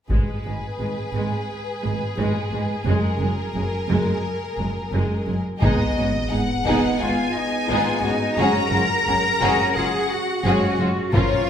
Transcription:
0.10 G#1 G#2 G#3 G#4 B4, taiko
0.45 G#1 G#2 G#3
0.80 G#1 G#2 G#3
1.14 G#1 G#2 G#3
1.83 G#1 G#2 G#3
2.18 G#1 G#2 G#3
2.53 G#1 G#2 G#3
2.86 F#1 F#2 G#3 A#4
3.20 F#1 F#2 G#3
3.55 F#1 F#2 G#3
3.88 F#1 F#2 G#3
4.58 F#1 F#2 G#3
4.93 F#1 F#2 G#3
5.27 F#1 F#2 G#3
5.60 G#1 G#3 B3 D#4 G#4 D#5, taiko, sub drop
5.96 G#1 G#3 B3 C#4 F#4
6.29 G#1 G#3 B3 D#4 G#4 F#5
6.65 G#1 G#3 B3 D#4 G#4, taiko
7.00 G#1 G#3 B3 C#4 F4 F#4 G#5
7.34 D#4
7.68 G#1 G#3 B3 D#4 F4 G#4
8.03 G#1 G#3 B3 C#4 D#4 F#4
8.37 F#1 G#3 C#4 F#4 G#4 A#5
8.71 F#1 G#3 C#4 F4 F#4 A#4
9.07 F#1 G#3 C#4 F#4 G#4
9.41 F#1 G#3 C#4 F#4 G#4
9.75 F#1 G#3 C#4 F4 F#4 G#4 F#5
10.11 F#4
10.45 F#1 G#3 C#4 F#4 G#4
10.79 F#1 G#3 C#4 F4 F#4
11.13 A#1 F3 C#4 F4 A#4 C#5, taiko

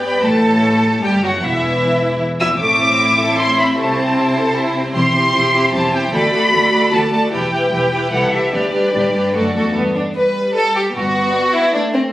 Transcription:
Already playing: G2
0.03 B3 B4 D5 G5 B5
0.22 A1 A2 A3 A4 A5
1.03 G1 G2 G3 G4 G5
1.22 F#1 F#2 F#3 F#4 F#5
1.42 E1 E2 E3 E4 E5
2.40 E2 E3 E4 E5 E6
2.60 A1 A2 A3 C4 E4 E5 D6
2.80 C4
2.99 E4
3.19 A4
3.38 E4 C6
3.58 C4 B5
3.77 C2 C3 A3 C5 A5
3.97 C4
4.17 E4
4.37 A4
4.56 E4
4.75 C4
4.95 E1 E2 C4 E4 G4 C5 C6
5.14 C4 E4 G4 C5
5.34 E1 E2 C4 E4 G4 C5
5.54 C4 E4 G4 C5
5.73 E1 E2 C4 E4 G4 C5 A5
5.93 C4 E4 G4 C5 G5
6.13 D2 A3 F#4 A4 D5 B5
6.33 A3 F#4 A4 D5
6.52 D2 A3 F#4 A4 D5
6.72 A3 F#4 A4 D5
6.92 D2 A3 F#4 A4 D5 A5
7.12 A3 F#4 A4 D5 A5
7.32 E1 E2 E3 E4 G4 B4 G5
7.52 E3 E4 G4 B4
7.72 E1 E2 E3 E4 G4 B4
7.92 E3 E4 G4 B4
8.11 C2 E3 E4 G4 A4 F#5
8.31 E3 E4 G4 A4 E5
8.52 D2 G3 D4 G4 B4 D5
8.73 G3 D4 G4 B4
8.93 D2 A2 G3 D4 G4 B4
9.14 G2 G3 D4 G4 B4
9.34 D2 F#2 A3 D4 F#4 A4
9.55 E2 A3 D4 F#4 A4
9.75 G1 G2 B3
9.95 D4
10.15 G3 B4 D5
10.55 A4 D5
10.75 G4
10.95 G1 G2 B3 F#4
11.33 D5
11.53 E4
11.72 A3 D4 D5
11.93 C4

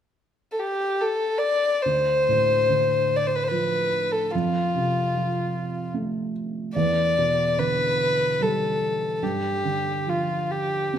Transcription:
0.52 A4
0.60 G4
1.01 A4
1.38 D5
1.82 D2 C5
2.29 A2
2.69 D3
3.16 D5
3.27 C5
3.35 B4
3.43 C5
3.48 F3 B4
4.11 A4
4.31 F2 F4
4.75 C3
5.15 F3
5.94 A3
6.75 E2 D5
7.18 B2
7.58 D3 B4
8.41 G3 A4
9.17 A4
9.22 G2 G4
9.65 D3
10.07 F3 F4
10.51 G4
10.93 B3

